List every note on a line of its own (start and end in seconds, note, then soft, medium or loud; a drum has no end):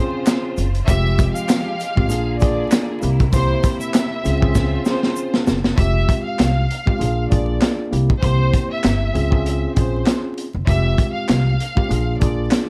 0.00 0.86 C#3 medium
0.00 0.67 C4 medium
0.00 0.67 C#4 medium
0.00 0.68 F4 medium
0.00 0.86 F4 medium
0.00 0.68 G#4 loud
0.00 0.40 C5 medium
0.00 0.86 C5 medium
0.26 snare loud
0.26 clap medium
0.26 closed hi-hat medium
0.26 shaker medium
0.57 0.83 F#1 medium
0.57 closed hi-hat medium
0.57 shaker soft
0.75 closed hi-hat soft
0.87 1.27 F1 loud
0.87 2.09 F3 medium
0.87 2.09 G#3 medium
0.87 1.74 G#3 medium
0.87 1.74 C4 medium
0.87 1.74 F4 medium
0.87 2.09 G4 medium
0.87 1.75 G4 loud
0.87 1.32 E5 loud
0.87 kick loud
0.87 closed hi-hat medium
0.87 shaker medium
1.19 kick loud
1.19 closed hi-hat medium
1.19 shaker medium
1.34 2.36 F5 medium
1.34 shaker medium
1.49 snare loud
1.49 clap medium
1.49 closed hi-hat loud
1.49 shaker medium
1.80 closed hi-hat medium
1.80 shaker soft
1.96 2.11 G#1 medium
1.96 2.10 G#3 medium
1.96 2.10 C4 medium
1.96 2.08 F4 medium
1.96 2.11 G4 loud
1.96 kick medium
2.08 2.61 A#1 loud
2.08 3.01 D3 medium
2.08 2.38 A#3 medium
2.08 4.23 A#3 medium
2.08 2.38 D4 medium
2.08 2.38 F4 medium
2.08 2.39 G#4 loud
2.08 3.01 G#4 medium
2.08 closed hi-hat medium
2.08 shaker medium
2.40 3.00 A#3 medium
2.40 3.02 D4 medium
2.40 3.02 F4 medium
2.40 3.03 G#4 loud
2.40 2.85 D5 medium
2.40 kick medium
2.40 closed hi-hat medium
2.40 shaker soft
2.71 snare loud
2.71 clap medium
2.71 closed hi-hat medium
2.71 shaker medium
3.01 3.53 C2 loud
3.01 4.24 C3 medium
3.01 3.23 A#3 medium
3.01 3.23 C4 medium
3.01 3.23 E4 medium
3.01 4.24 E4 medium
3.01 3.24 G4 loud
3.01 closed hi-hat medium
3.01 shaker soft
3.20 kick loud
3.20 closed hi-hat medium
3.33 4.19 A#3 loud
3.33 4.19 C4 medium
3.33 4.20 E4 medium
3.33 4.20 G4 loud
3.33 3.78 C5 loud
3.33 kick loud
3.33 closed hi-hat medium
3.33 shaker medium
3.64 kick loud
3.64 closed hi-hat medium
3.64 shaker medium
3.80 4.81 E5 medium
3.80 shaker medium
3.94 snare loud
3.94 clap loud
3.94 closed hi-hat loud
3.94 shaker medium
4.23 4.75 C#2 loud
4.23 5.76 C#3 medium
4.23 4.39 C4 loud
4.23 4.39 C#4 medium
4.23 4.40 F4 medium
4.23 5.76 F4 medium
4.23 4.41 G#4 loud
4.23 5.76 C5 medium
4.23 closed hi-hat medium
4.23 shaker soft
4.40 4.82 C4 medium
4.40 4.82 C#4 medium
4.40 4.82 F4 medium
4.40 4.83 G#4 medium
4.40 kick medium
4.55 kick loud
4.55 snare medium
4.55 shaker medium
4.85 5.57 C4 medium
4.85 5.57 C#4 medium
4.85 5.58 F4 medium
4.85 5.58 G#4 loud
4.85 5.31 C5 medium
4.85 snare medium
4.85 shaker soft
5.03 snare medium
5.16 shaker medium
5.34 snare medium
5.47 5.73 F#1 medium
5.47 snare loud
5.47 shaker soft
5.64 snare loud
5.76 6.03 F1 loud
5.76 6.63 G#3 medium
5.76 6.64 C4 medium
5.76 6.64 F4 medium
5.76 6.22 E5 loud
5.76 kick loud
5.76 closed hi-hat medium
5.80 6.64 G4 loud
6.09 kick loud
6.09 closed hi-hat medium
6.24 7.26 F5 medium
6.39 6.64 C2 medium
6.39 snare loud
6.39 clap medium
6.39 closed hi-hat loud
6.70 closed hi-hat medium
6.85 7.00 G#3 medium
6.85 7.00 C4 medium
6.85 6.98 F4 medium
6.85 7.00 G4 loud
6.85 kick medium
6.98 7.26 A#1 loud
6.98 7.28 A#3 medium
6.98 7.28 D4 medium
6.98 7.28 F4 medium
6.98 7.28 G#4 loud
6.98 closed hi-hat medium
7.30 7.57 A#1 medium
7.30 7.89 A#3 medium
7.30 7.92 D4 medium
7.30 7.92 F4 medium
7.30 7.92 G#4 loud
7.30 7.76 D5 medium
7.30 kick medium
7.30 closed hi-hat medium
7.61 snare loud
7.61 clap medium
7.61 closed hi-hat medium
7.91 8.06 C2 loud
7.91 8.13 A#3 medium
7.91 8.13 C4 medium
7.91 8.13 E4 medium
7.91 8.13 G4 loud
7.91 closed hi-hat medium
8.10 kick loud
8.21 8.48 C2 loud
8.21 9.09 A#3 medium
8.21 9.09 C4 medium
8.21 8.66 C5 loud
8.21 kick loud
8.21 closed hi-hat medium
8.25 9.09 E4 medium
8.25 9.09 G4 loud
8.54 kick medium
8.54 closed hi-hat medium
8.72 9.73 E5 medium
8.84 9.09 G1 loud
8.84 snare loud
8.84 clap medium
8.84 closed hi-hat loud
9.13 9.65 C#2 loud
9.13 9.29 C4 medium
9.13 9.29 C#4 medium
9.13 9.30 F4 medium
9.13 9.30 G#4 loud
9.13 closed hi-hat medium
9.30 9.72 C4 medium
9.30 9.72 C#4 medium
9.30 9.72 F4 medium
9.30 9.72 G#4 medium
9.30 kick medium
9.46 closed hi-hat medium
9.74 10.02 A#1 medium
9.74 10.47 C4 medium
9.74 10.47 C#4 medium
9.74 10.47 F4 medium
9.74 10.47 G#4 loud
9.74 10.20 C5 medium
9.74 kick medium
9.74 closed hi-hat medium
10.06 snare loud
10.06 clap medium
10.06 closed hi-hat medium
10.38 closed hi-hat medium
10.55 10.65 F#1 medium
10.66 10.93 F1 loud
10.66 11.53 G#3 medium
10.66 11.54 C4 medium
10.66 11.54 F4 medium
10.66 11.54 G4 loud
10.66 11.11 E5 loud
10.66 kick loud
10.66 closed hi-hat medium
10.98 kick loud
10.98 closed hi-hat medium
11.13 12.16 F5 medium
11.29 11.54 C2 medium
11.29 snare loud
11.29 clap medium
11.29 closed hi-hat medium
11.60 closed hi-hat medium
11.75 11.89 G#3 medium
11.75 11.90 C4 medium
11.75 11.88 F4 medium
11.75 11.90 G4 loud
11.75 kick medium
11.88 12.15 A#1 loud
11.88 12.17 A#3 medium
11.88 12.18 D4 medium
11.88 12.18 F4 medium
11.88 12.18 G#4 loud
11.88 closed hi-hat medium
12.19 12.47 A#1 medium
12.19 12.69 A#3 medium
12.19 12.69 D4 medium
12.19 12.69 F4 medium
12.19 12.69 G#4 loud
12.19 12.65 D5 medium
12.19 kick medium
12.19 closed hi-hat medium
12.51 snare loud
12.51 clap medium
12.51 closed hi-hat medium